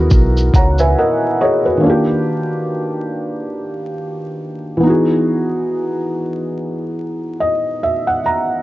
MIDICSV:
0, 0, Header, 1, 4, 480
1, 0, Start_track
1, 0, Tempo, 857143
1, 1021, Time_signature, 4, 2, 24, 8
1, 4829, End_track
2, 0, Start_track
2, 0, Title_t, "Felt piano"
2, 0, Program_c, 0, 0
2, 0, Control_c, 0, 64, 127
2, 0, Note_on_c, 0, 59, 72
2, 0, Note_on_c, 0, 63, 70
2, 0, Note_on_c, 0, 64, 81
2, 0, Note_on_c, 0, 66, 76
2, 0, Note_on_c, 0, 68, 90
2, 0, Note_on_c, 0, 70, 87
2, 190, Note_off_c, 0, 64, 0
2, 194, Note_off_c, 0, 59, 0
2, 198, Note_off_c, 0, 63, 0
2, 203, Note_off_c, 0, 66, 0
2, 207, Note_off_c, 0, 70, 0
2, 310, Note_on_c, 0, 78, 59
2, 311, Note_on_c, 0, 82, 67
2, 313, Note_on_c, 0, 73, 52
2, 433, Note_off_c, 0, 82, 0
2, 435, Note_off_c, 0, 78, 0
2, 437, Note_off_c, 0, 73, 0
2, 446, Note_on_c, 0, 76, 66
2, 446, Note_on_c, 0, 80, 68
2, 450, Note_on_c, 0, 71, 60
2, 539, Note_off_c, 0, 80, 0
2, 541, Note_off_c, 0, 76, 0
2, 543, Note_off_c, 0, 71, 0
2, 551, Note_on_c, 0, 75, 64
2, 552, Note_on_c, 0, 78, 68
2, 554, Note_on_c, 0, 70, 58
2, 770, Note_off_c, 0, 78, 0
2, 774, Note_off_c, 0, 75, 0
2, 776, Note_off_c, 0, 70, 0
2, 789, Note_on_c, 0, 75, 69
2, 790, Note_on_c, 0, 73, 63
2, 793, Note_off_c, 0, 68, 0
2, 793, Note_on_c, 0, 68, 60
2, 915, Note_off_c, 0, 73, 0
2, 917, Note_off_c, 0, 68, 0
2, 927, Note_on_c, 0, 71, 57
2, 929, Note_on_c, 0, 66, 52
2, 993, Note_on_c, 0, 51, 63
2, 1009, Note_off_c, 0, 75, 0
2, 1010, Note_on_c, 0, 58, 58
2, 1027, Note_on_c, 0, 62, 57
2, 1028, Control_c, 0, 64, 0
2, 1043, Note_on_c, 0, 65, 56
2, 1062, Note_on_c, 0, 67, 74
2, 1130, Control_c, 0, 64, 127
2, 1150, Note_off_c, 0, 71, 0
2, 1151, Note_off_c, 0, 66, 0
2, 2665, Note_off_c, 0, 51, 0
2, 2671, Note_on_c, 0, 52, 64
2, 2673, Note_off_c, 0, 58, 0
2, 2682, Note_off_c, 0, 62, 0
2, 2690, Note_off_c, 0, 65, 0
2, 2690, Note_on_c, 0, 59, 63
2, 2699, Note_off_c, 0, 67, 0
2, 2707, Note_on_c, 0, 63, 65
2, 2709, Control_c, 0, 64, 0
2, 2725, Note_on_c, 0, 66, 58
2, 2742, Note_on_c, 0, 68, 68
2, 2816, Control_c, 0, 64, 127
2, 4146, Note_on_c, 0, 75, 66
2, 4367, Note_off_c, 0, 75, 0
2, 4386, Note_on_c, 0, 76, 61
2, 4510, Note_off_c, 0, 76, 0
2, 4521, Note_on_c, 0, 78, 60
2, 4584, Note_off_c, 0, 52, 0
2, 4593, Note_off_c, 0, 59, 0
2, 4601, Note_off_c, 0, 63, 0
2, 4611, Note_off_c, 0, 66, 0
2, 4616, Note_off_c, 0, 78, 0
2, 4619, Note_off_c, 0, 68, 0
2, 4625, Note_on_c, 0, 82, 61
2, 4829, Note_off_c, 0, 82, 0
2, 4829, End_track
3, 0, Start_track
3, 0, Title_t, "Fingered electric bass"
3, 0, Program_c, 1, 33
3, 65, Note_on_c, 1, 35, 100
3, 288, Note_off_c, 1, 35, 0
3, 303, Note_on_c, 1, 37, 91
3, 527, Note_off_c, 1, 37, 0
3, 4829, End_track
4, 0, Start_track
4, 0, Title_t, "Drums"
4, 58, Note_on_c, 9, 82, 69
4, 63, Note_on_c, 9, 36, 84
4, 114, Note_off_c, 9, 82, 0
4, 119, Note_off_c, 9, 36, 0
4, 206, Note_on_c, 9, 82, 49
4, 262, Note_off_c, 9, 82, 0
4, 301, Note_on_c, 9, 36, 79
4, 305, Note_on_c, 9, 42, 66
4, 305, Note_on_c, 9, 82, 46
4, 357, Note_off_c, 9, 36, 0
4, 361, Note_off_c, 9, 42, 0
4, 361, Note_off_c, 9, 82, 0
4, 438, Note_on_c, 9, 82, 44
4, 494, Note_off_c, 9, 82, 0
4, 4829, End_track
0, 0, End_of_file